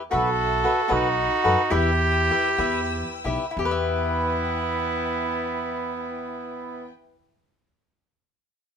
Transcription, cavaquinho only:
0.11 0.28 F#4 medium
0.11 0.29 A4 medium
0.11 0.29 B4 medium
0.11 0.29 E5 medium
0.64 0.80 F#4 medium
0.64 0.80 A4 medium
0.64 0.80 B4 medium
0.64 0.81 E5 medium
0.88 1.07 F#4 medium
0.88 1.07 A4 medium
0.88 1.07 B4 medium
0.88 1.07 D#5 medium
1.44 1.60 F#4 medium
1.44 1.61 A4 medium
1.44 1.61 B4 medium
1.44 1.61 D#5 medium
1.70 1.90 E4 medium
1.70 1.90 G4 medium
1.70 1.90 B4 medium
1.70 1.90 E5 loud
2.30 2.48 E4 medium
2.30 2.48 G4 medium
2.30 2.48 B4 medium
2.30 2.48 E5 medium
2.58 2.79 E4 medium
2.58 2.79 G4 medium
2.58 2.80 B4 medium
2.58 2.80 E5 medium
3.24 3.44 E4 medium
3.24 3.44 G4 medium
3.24 3.44 B4 medium
3.24 3.45 E5 medium
3.51 7.01 E4 medium
3.59 7.09 G4 medium
3.65 7.15 B4 medium
3.71 7.21 E5 medium

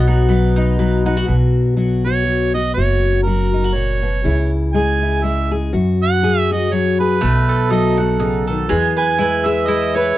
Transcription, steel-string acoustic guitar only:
0.00 1.26 B2 medium
0.00 0.28 F#3 medium
0.09 1.05 F#4 medium
0.29 0.78 F#3 medium
0.57 1.05 D#4 medium
0.79 1.75 F#3 medium
1.06 1.17 D#4 medium
1.17 1.27 F#4 medium
1.27 2.76 B2 medium
1.27 1.77 F#4 medium
1.77 2.25 F#3 medium
1.77 2.06 F#4 medium
2.06 2.54 F#4 medium
2.26 3.25 F#3 medium
2.55 2.74 F#4 medium
2.77 3.75 F#2 medium
2.77 3.26 F#4 medium
3.26 4.25 F#3 medium
3.26 3.53 F#4 medium
3.54 3.64 D#4 medium
3.64 4.24 F#4 soft
3.75 4.03 A#2 medium
4.02 4.24 B2 medium
4.24 5.70 C#3 medium
4.24 5.01 E4 medium
4.74 5.22 G#3 medium
4.74 5.50 G#4 medium
5.02 5.71 E4 medium
5.23 5.71 G#3 medium
5.51 5.71 G#4 medium
5.73 7.21 F#2 medium
5.73 6.51 F#4 medium
6.23 6.71 F#3 medium
6.23 6.99 G#4 medium
6.51 7.19 F#4 medium
6.72 7.70 F#3 medium
7.00 7.19 G#4 medium
7.21 8.20 B2 medium
7.21 7.98 F#4 medium
7.71 8.70 F#3 medium
7.71 8.67 A4 medium
8.00 8.68 F#4 medium
8.20 8.48 C#3 medium
8.50 8.68 D#3 medium
8.69 10.14 E3 medium
8.69 9.45 G#4 medium
9.19 9.67 G#3 medium
9.19 9.94 B4 medium
9.46 10.15 G#4 medium
9.68 10.15 G#3 medium
9.96 10.15 B4 medium

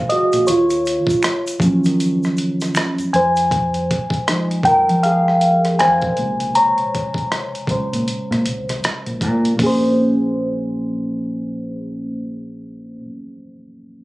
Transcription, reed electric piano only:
0.00 0.45 C3 medium
0.00 0.44 C#3 soft
0.00 0.44 G#3 soft
0.00 0.49 G#4 medium
0.00 0.49 C5 medium
0.00 0.13 F5 medium
0.00 0.49 F#5 medium
0.00 0.49 G#5 medium
0.09 0.46 F#4 medium
0.09 0.49 D#5 medium
0.47 1.21 F4 medium
0.47 1.19 C#5 medium
1.62 2.72 F3 medium
1.62 2.72 F#3 soft
1.62 2.72 C#4 medium
3.13 4.62 C5 medium
3.13 4.70 G#5 medium
4.28 6.13 F3 soft
4.28 6.14 G#3 soft
4.28 6.14 D#4 soft
4.65 5.02 A#4 medium
4.65 5.04 G5 medium
5.03 5.76 G#4 medium
5.03 5.81 F5 medium
5.79 6.52 C5 medium
5.79 6.57 G#5 medium
6.18 9.18 C3 medium
6.18 7.69 C#3 soft
6.18 7.69 G#3 soft
6.55 8.80 C#5 medium
6.55 8.79 A#5 medium
7.70 8.04 C#3 soft
7.70 8.04 G#3 soft
7.70 8.04 C5 soft
9.54 12.93 A#2 medium
9.54 12.96 A#3 medium
9.60 13.00 C#4 medium
9.60 13.03 G#4 medium
9.67 13.06 C5 medium

